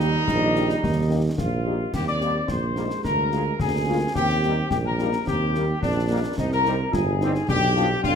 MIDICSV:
0, 0, Header, 1, 8, 480
1, 0, Start_track
1, 0, Key_signature, -3, "major"
1, 0, Tempo, 554017
1, 723, Time_signature, 2, 2, 24, 8
1, 7063, End_track
2, 0, Start_track
2, 0, Title_t, "Flute section"
2, 0, Program_c, 0, 73
2, 0, Note_on_c, 0, 75, 110
2, 1005, Note_off_c, 0, 75, 0
2, 1214, Note_on_c, 0, 77, 86
2, 1655, Note_off_c, 0, 77, 0
2, 1684, Note_on_c, 0, 79, 96
2, 1736, Note_off_c, 0, 79, 0
2, 1796, Note_on_c, 0, 86, 85
2, 2134, Note_off_c, 0, 86, 0
2, 2150, Note_on_c, 0, 84, 72
2, 2602, Note_off_c, 0, 84, 0
2, 2638, Note_on_c, 0, 82, 94
2, 3086, Note_off_c, 0, 82, 0
2, 3125, Note_on_c, 0, 80, 90
2, 3604, Note_off_c, 0, 80, 0
2, 3613, Note_on_c, 0, 79, 92
2, 4055, Note_off_c, 0, 79, 0
2, 4069, Note_on_c, 0, 79, 92
2, 4187, Note_off_c, 0, 79, 0
2, 4201, Note_on_c, 0, 82, 86
2, 4562, Note_off_c, 0, 82, 0
2, 4565, Note_on_c, 0, 79, 101
2, 5011, Note_off_c, 0, 79, 0
2, 5041, Note_on_c, 0, 74, 100
2, 5489, Note_off_c, 0, 74, 0
2, 5528, Note_on_c, 0, 75, 79
2, 5638, Note_off_c, 0, 75, 0
2, 5646, Note_on_c, 0, 82, 105
2, 5980, Note_off_c, 0, 82, 0
2, 6009, Note_on_c, 0, 80, 88
2, 6487, Note_off_c, 0, 80, 0
2, 6500, Note_on_c, 0, 79, 118
2, 6940, Note_off_c, 0, 79, 0
2, 6976, Note_on_c, 0, 77, 106
2, 7063, Note_off_c, 0, 77, 0
2, 7063, End_track
3, 0, Start_track
3, 0, Title_t, "Trumpet section"
3, 0, Program_c, 1, 61
3, 0, Note_on_c, 1, 63, 127
3, 1046, Note_off_c, 1, 63, 0
3, 1194, Note_on_c, 1, 65, 85
3, 1644, Note_off_c, 1, 65, 0
3, 1673, Note_on_c, 1, 67, 101
3, 1789, Note_off_c, 1, 67, 0
3, 1798, Note_on_c, 1, 74, 101
3, 2135, Note_off_c, 1, 74, 0
3, 2160, Note_on_c, 1, 72, 85
3, 2635, Note_on_c, 1, 70, 100
3, 2641, Note_off_c, 1, 72, 0
3, 3085, Note_off_c, 1, 70, 0
3, 3121, Note_on_c, 1, 68, 89
3, 3568, Note_off_c, 1, 68, 0
3, 3597, Note_on_c, 1, 67, 116
3, 4046, Note_off_c, 1, 67, 0
3, 4078, Note_on_c, 1, 67, 90
3, 4133, Note_off_c, 1, 67, 0
3, 4199, Note_on_c, 1, 70, 97
3, 4536, Note_off_c, 1, 70, 0
3, 4558, Note_on_c, 1, 67, 108
3, 5007, Note_off_c, 1, 67, 0
3, 5042, Note_on_c, 1, 62, 101
3, 5489, Note_off_c, 1, 62, 0
3, 5523, Note_on_c, 1, 63, 96
3, 5643, Note_off_c, 1, 63, 0
3, 5646, Note_on_c, 1, 70, 103
3, 5980, Note_off_c, 1, 70, 0
3, 6002, Note_on_c, 1, 68, 89
3, 6483, Note_on_c, 1, 67, 127
3, 6484, Note_off_c, 1, 68, 0
3, 6931, Note_off_c, 1, 67, 0
3, 6962, Note_on_c, 1, 65, 117
3, 7063, Note_off_c, 1, 65, 0
3, 7063, End_track
4, 0, Start_track
4, 0, Title_t, "Euphonium"
4, 0, Program_c, 2, 58
4, 0, Note_on_c, 2, 51, 92
4, 1404, Note_off_c, 2, 51, 0
4, 1671, Note_on_c, 2, 60, 75
4, 2159, Note_on_c, 2, 58, 65
4, 2172, Note_off_c, 2, 60, 0
4, 2389, Note_on_c, 2, 56, 71
4, 2402, Note_off_c, 2, 58, 0
4, 3110, Note_on_c, 2, 58, 75
4, 3123, Note_off_c, 2, 56, 0
4, 3596, Note_off_c, 2, 58, 0
4, 3603, Note_on_c, 2, 60, 75
4, 4082, Note_on_c, 2, 58, 81
4, 4095, Note_off_c, 2, 60, 0
4, 4554, Note_on_c, 2, 60, 75
4, 4567, Note_off_c, 2, 58, 0
4, 4798, Note_off_c, 2, 60, 0
4, 4816, Note_on_c, 2, 58, 72
4, 4921, Note_off_c, 2, 58, 0
4, 5037, Note_on_c, 2, 60, 83
4, 5146, Note_off_c, 2, 60, 0
4, 5275, Note_on_c, 2, 58, 78
4, 5385, Note_off_c, 2, 58, 0
4, 5526, Note_on_c, 2, 60, 83
4, 5972, Note_off_c, 2, 60, 0
4, 5993, Note_on_c, 2, 65, 89
4, 6103, Note_off_c, 2, 65, 0
4, 6237, Note_on_c, 2, 63, 75
4, 6464, Note_off_c, 2, 63, 0
4, 6483, Note_on_c, 2, 62, 77
4, 6707, Note_off_c, 2, 62, 0
4, 6733, Note_on_c, 2, 59, 85
4, 6839, Note_off_c, 2, 59, 0
4, 6962, Note_on_c, 2, 62, 104
4, 7063, Note_off_c, 2, 62, 0
4, 7063, End_track
5, 0, Start_track
5, 0, Title_t, "French horn section"
5, 0, Program_c, 3, 60
5, 0, Note_on_c, 3, 63, 73
5, 1, Note_on_c, 3, 58, 67
5, 2, Note_on_c, 3, 67, 65
5, 87, Note_off_c, 3, 63, 0
5, 88, Note_off_c, 3, 58, 0
5, 88, Note_off_c, 3, 67, 0
5, 482, Note_on_c, 3, 63, 68
5, 483, Note_on_c, 3, 58, 65
5, 485, Note_on_c, 3, 67, 76
5, 568, Note_off_c, 3, 63, 0
5, 569, Note_off_c, 3, 58, 0
5, 571, Note_off_c, 3, 67, 0
5, 958, Note_on_c, 3, 58, 74
5, 960, Note_on_c, 3, 63, 74
5, 960, Note_on_c, 3, 67, 67
5, 1046, Note_off_c, 3, 58, 0
5, 1047, Note_off_c, 3, 63, 0
5, 1047, Note_off_c, 3, 67, 0
5, 1434, Note_on_c, 3, 63, 63
5, 1437, Note_on_c, 3, 58, 70
5, 1438, Note_on_c, 3, 67, 68
5, 1522, Note_off_c, 3, 63, 0
5, 1525, Note_off_c, 3, 58, 0
5, 1526, Note_off_c, 3, 67, 0
5, 1922, Note_on_c, 3, 67, 65
5, 1924, Note_on_c, 3, 58, 62
5, 1924, Note_on_c, 3, 63, 59
5, 2008, Note_off_c, 3, 67, 0
5, 2010, Note_off_c, 3, 58, 0
5, 2010, Note_off_c, 3, 63, 0
5, 2404, Note_on_c, 3, 58, 63
5, 2406, Note_on_c, 3, 63, 66
5, 2408, Note_on_c, 3, 67, 57
5, 2490, Note_off_c, 3, 58, 0
5, 2491, Note_off_c, 3, 63, 0
5, 2493, Note_off_c, 3, 67, 0
5, 2885, Note_on_c, 3, 56, 62
5, 2885, Note_on_c, 3, 65, 63
5, 2888, Note_on_c, 3, 58, 62
5, 2970, Note_off_c, 3, 65, 0
5, 2971, Note_off_c, 3, 56, 0
5, 2973, Note_off_c, 3, 58, 0
5, 3362, Note_on_c, 3, 58, 68
5, 3362, Note_on_c, 3, 65, 70
5, 3365, Note_on_c, 3, 56, 67
5, 3449, Note_off_c, 3, 58, 0
5, 3449, Note_off_c, 3, 65, 0
5, 3451, Note_off_c, 3, 56, 0
5, 3845, Note_on_c, 3, 55, 62
5, 3846, Note_on_c, 3, 63, 58
5, 3850, Note_on_c, 3, 58, 64
5, 3931, Note_off_c, 3, 55, 0
5, 3932, Note_off_c, 3, 63, 0
5, 3935, Note_off_c, 3, 58, 0
5, 4326, Note_on_c, 3, 55, 63
5, 4327, Note_on_c, 3, 58, 69
5, 4329, Note_on_c, 3, 63, 66
5, 4412, Note_off_c, 3, 55, 0
5, 4413, Note_off_c, 3, 58, 0
5, 4414, Note_off_c, 3, 63, 0
5, 4812, Note_on_c, 3, 55, 66
5, 4813, Note_on_c, 3, 58, 70
5, 4815, Note_on_c, 3, 63, 63
5, 4897, Note_off_c, 3, 55, 0
5, 4897, Note_off_c, 3, 58, 0
5, 4899, Note_off_c, 3, 63, 0
5, 5287, Note_on_c, 3, 58, 70
5, 5288, Note_on_c, 3, 55, 74
5, 5288, Note_on_c, 3, 63, 65
5, 5373, Note_off_c, 3, 55, 0
5, 5373, Note_off_c, 3, 58, 0
5, 5373, Note_off_c, 3, 63, 0
5, 5772, Note_on_c, 3, 55, 70
5, 5773, Note_on_c, 3, 60, 77
5, 5774, Note_on_c, 3, 63, 68
5, 5857, Note_off_c, 3, 55, 0
5, 5858, Note_off_c, 3, 60, 0
5, 5858, Note_off_c, 3, 63, 0
5, 6246, Note_on_c, 3, 55, 71
5, 6247, Note_on_c, 3, 63, 74
5, 6249, Note_on_c, 3, 60, 70
5, 6332, Note_off_c, 3, 55, 0
5, 6333, Note_off_c, 3, 63, 0
5, 6335, Note_off_c, 3, 60, 0
5, 6724, Note_on_c, 3, 65, 73
5, 6725, Note_on_c, 3, 62, 75
5, 6727, Note_on_c, 3, 55, 74
5, 6811, Note_off_c, 3, 62, 0
5, 6811, Note_off_c, 3, 65, 0
5, 6813, Note_off_c, 3, 55, 0
5, 7063, End_track
6, 0, Start_track
6, 0, Title_t, "Trombone section"
6, 0, Program_c, 4, 61
6, 0, Note_on_c, 4, 55, 91
6, 1442, Note_off_c, 4, 55, 0
6, 1925, Note_on_c, 4, 55, 79
6, 1933, Note_on_c, 4, 58, 74
6, 2008, Note_off_c, 4, 55, 0
6, 2013, Note_off_c, 4, 58, 0
6, 2392, Note_on_c, 4, 58, 85
6, 2394, Note_on_c, 4, 55, 77
6, 2479, Note_off_c, 4, 58, 0
6, 2480, Note_off_c, 4, 55, 0
6, 2867, Note_on_c, 4, 58, 66
6, 2868, Note_on_c, 4, 56, 73
6, 2956, Note_off_c, 4, 58, 0
6, 2957, Note_off_c, 4, 56, 0
6, 3353, Note_on_c, 4, 56, 76
6, 3358, Note_on_c, 4, 58, 86
6, 3440, Note_off_c, 4, 56, 0
6, 3443, Note_off_c, 4, 58, 0
6, 3848, Note_on_c, 4, 58, 74
6, 3855, Note_on_c, 4, 55, 76
6, 3930, Note_off_c, 4, 58, 0
6, 3934, Note_off_c, 4, 55, 0
6, 4319, Note_on_c, 4, 55, 80
6, 4320, Note_on_c, 4, 58, 80
6, 4404, Note_off_c, 4, 55, 0
6, 4405, Note_off_c, 4, 58, 0
6, 4807, Note_on_c, 4, 55, 73
6, 4811, Note_on_c, 4, 58, 80
6, 4889, Note_off_c, 4, 55, 0
6, 4892, Note_off_c, 4, 58, 0
6, 5293, Note_on_c, 4, 55, 86
6, 5295, Note_on_c, 4, 58, 96
6, 5374, Note_off_c, 4, 55, 0
6, 5374, Note_off_c, 4, 58, 0
6, 5764, Note_on_c, 4, 55, 86
6, 5766, Note_on_c, 4, 60, 85
6, 5848, Note_off_c, 4, 55, 0
6, 5849, Note_off_c, 4, 60, 0
6, 6255, Note_on_c, 4, 55, 91
6, 6260, Note_on_c, 4, 60, 102
6, 6335, Note_off_c, 4, 55, 0
6, 6339, Note_off_c, 4, 60, 0
6, 6723, Note_on_c, 4, 53, 92
6, 6724, Note_on_c, 4, 62, 85
6, 6807, Note_off_c, 4, 53, 0
6, 6808, Note_off_c, 4, 62, 0
6, 7063, End_track
7, 0, Start_track
7, 0, Title_t, "Tuba"
7, 0, Program_c, 5, 58
7, 0, Note_on_c, 5, 39, 94
7, 158, Note_off_c, 5, 39, 0
7, 242, Note_on_c, 5, 34, 97
7, 642, Note_off_c, 5, 34, 0
7, 726, Note_on_c, 5, 39, 94
7, 1124, Note_off_c, 5, 39, 0
7, 1201, Note_on_c, 5, 34, 91
7, 1601, Note_off_c, 5, 34, 0
7, 1679, Note_on_c, 5, 39, 74
7, 2080, Note_off_c, 5, 39, 0
7, 2161, Note_on_c, 5, 34, 80
7, 2526, Note_off_c, 5, 34, 0
7, 2646, Note_on_c, 5, 38, 77
7, 3044, Note_off_c, 5, 38, 0
7, 3122, Note_on_c, 5, 38, 82
7, 3522, Note_off_c, 5, 38, 0
7, 3603, Note_on_c, 5, 39, 84
7, 4002, Note_off_c, 5, 39, 0
7, 4082, Note_on_c, 5, 34, 85
7, 4482, Note_off_c, 5, 34, 0
7, 4571, Note_on_c, 5, 39, 83
7, 4967, Note_off_c, 5, 39, 0
7, 5049, Note_on_c, 5, 34, 93
7, 5446, Note_off_c, 5, 34, 0
7, 5524, Note_on_c, 5, 36, 81
7, 5924, Note_off_c, 5, 36, 0
7, 6011, Note_on_c, 5, 31, 100
7, 6408, Note_off_c, 5, 31, 0
7, 6486, Note_on_c, 5, 35, 99
7, 6886, Note_off_c, 5, 35, 0
7, 6971, Note_on_c, 5, 35, 96
7, 7063, Note_off_c, 5, 35, 0
7, 7063, End_track
8, 0, Start_track
8, 0, Title_t, "Drums"
8, 0, Note_on_c, 9, 38, 62
8, 87, Note_off_c, 9, 38, 0
8, 241, Note_on_c, 9, 35, 86
8, 241, Note_on_c, 9, 38, 81
8, 328, Note_off_c, 9, 35, 0
8, 328, Note_off_c, 9, 38, 0
8, 482, Note_on_c, 9, 38, 62
8, 568, Note_off_c, 9, 38, 0
8, 603, Note_on_c, 9, 38, 62
8, 690, Note_off_c, 9, 38, 0
8, 723, Note_on_c, 9, 35, 87
8, 723, Note_on_c, 9, 38, 65
8, 810, Note_off_c, 9, 35, 0
8, 810, Note_off_c, 9, 38, 0
8, 1198, Note_on_c, 9, 35, 85
8, 1198, Note_on_c, 9, 38, 81
8, 1285, Note_off_c, 9, 35, 0
8, 1285, Note_off_c, 9, 38, 0
8, 1677, Note_on_c, 9, 35, 79
8, 1677, Note_on_c, 9, 38, 69
8, 1677, Note_on_c, 9, 49, 54
8, 1764, Note_off_c, 9, 35, 0
8, 1764, Note_off_c, 9, 38, 0
8, 1764, Note_off_c, 9, 49, 0
8, 1797, Note_on_c, 9, 38, 46
8, 1884, Note_off_c, 9, 38, 0
8, 1914, Note_on_c, 9, 38, 54
8, 2001, Note_off_c, 9, 38, 0
8, 2152, Note_on_c, 9, 35, 78
8, 2152, Note_on_c, 9, 38, 79
8, 2239, Note_off_c, 9, 35, 0
8, 2239, Note_off_c, 9, 38, 0
8, 2395, Note_on_c, 9, 38, 59
8, 2481, Note_off_c, 9, 38, 0
8, 2516, Note_on_c, 9, 38, 62
8, 2603, Note_off_c, 9, 38, 0
8, 2638, Note_on_c, 9, 35, 76
8, 2638, Note_on_c, 9, 38, 64
8, 2725, Note_off_c, 9, 35, 0
8, 2725, Note_off_c, 9, 38, 0
8, 2875, Note_on_c, 9, 38, 54
8, 2962, Note_off_c, 9, 38, 0
8, 3115, Note_on_c, 9, 35, 80
8, 3115, Note_on_c, 9, 38, 70
8, 3202, Note_off_c, 9, 35, 0
8, 3202, Note_off_c, 9, 38, 0
8, 3600, Note_on_c, 9, 35, 78
8, 3600, Note_on_c, 9, 38, 78
8, 3687, Note_off_c, 9, 35, 0
8, 3687, Note_off_c, 9, 38, 0
8, 3721, Note_on_c, 9, 38, 54
8, 3807, Note_off_c, 9, 38, 0
8, 3838, Note_on_c, 9, 38, 50
8, 3925, Note_off_c, 9, 38, 0
8, 4079, Note_on_c, 9, 35, 78
8, 4079, Note_on_c, 9, 38, 81
8, 4165, Note_off_c, 9, 35, 0
8, 4165, Note_off_c, 9, 38, 0
8, 4324, Note_on_c, 9, 38, 56
8, 4410, Note_off_c, 9, 38, 0
8, 4442, Note_on_c, 9, 38, 64
8, 4528, Note_off_c, 9, 38, 0
8, 4568, Note_on_c, 9, 35, 81
8, 4568, Note_on_c, 9, 38, 70
8, 4655, Note_off_c, 9, 35, 0
8, 4655, Note_off_c, 9, 38, 0
8, 4807, Note_on_c, 9, 38, 54
8, 4893, Note_off_c, 9, 38, 0
8, 5048, Note_on_c, 9, 35, 85
8, 5048, Note_on_c, 9, 38, 67
8, 5135, Note_off_c, 9, 35, 0
8, 5135, Note_off_c, 9, 38, 0
8, 5526, Note_on_c, 9, 35, 82
8, 5526, Note_on_c, 9, 38, 68
8, 5526, Note_on_c, 9, 49, 29
8, 5613, Note_off_c, 9, 35, 0
8, 5613, Note_off_c, 9, 38, 0
8, 5613, Note_off_c, 9, 49, 0
8, 5648, Note_on_c, 9, 38, 47
8, 5734, Note_off_c, 9, 38, 0
8, 5766, Note_on_c, 9, 38, 60
8, 5853, Note_off_c, 9, 38, 0
8, 6008, Note_on_c, 9, 35, 85
8, 6008, Note_on_c, 9, 38, 82
8, 6094, Note_off_c, 9, 35, 0
8, 6094, Note_off_c, 9, 38, 0
8, 6248, Note_on_c, 9, 38, 59
8, 6335, Note_off_c, 9, 38, 0
8, 6367, Note_on_c, 9, 38, 57
8, 6454, Note_off_c, 9, 38, 0
8, 6486, Note_on_c, 9, 35, 84
8, 6486, Note_on_c, 9, 38, 70
8, 6573, Note_off_c, 9, 35, 0
8, 6573, Note_off_c, 9, 38, 0
8, 6727, Note_on_c, 9, 38, 56
8, 6814, Note_off_c, 9, 38, 0
8, 6964, Note_on_c, 9, 35, 85
8, 6964, Note_on_c, 9, 38, 75
8, 7051, Note_off_c, 9, 35, 0
8, 7051, Note_off_c, 9, 38, 0
8, 7063, End_track
0, 0, End_of_file